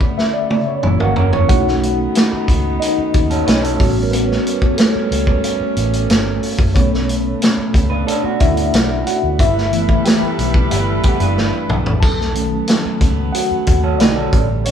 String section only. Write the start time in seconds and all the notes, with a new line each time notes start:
Already playing: B2 A3 B3
0.83 E3 F#3 A#3
1.49 D#3 A3 B3
3.79 G3 C#4
6.75 B3
9.39 G3 E4 A4 B4
12.02 F#3 A3 B3
14.32 B2 G3